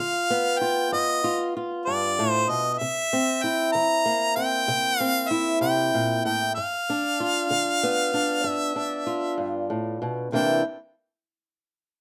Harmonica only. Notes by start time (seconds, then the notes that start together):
Already playing: F5
0.59 G5
0.93 D#5
1.85 D5
2.30 C5
2.49 D#5
2.73 D#5
2.78 E5
3.42 G5
3.72 A#5
4.36 G5
5.00 F5
5.29 E5
5.61 G5
6.25 G5
6.55 F5
8.48 E5
10.33 G5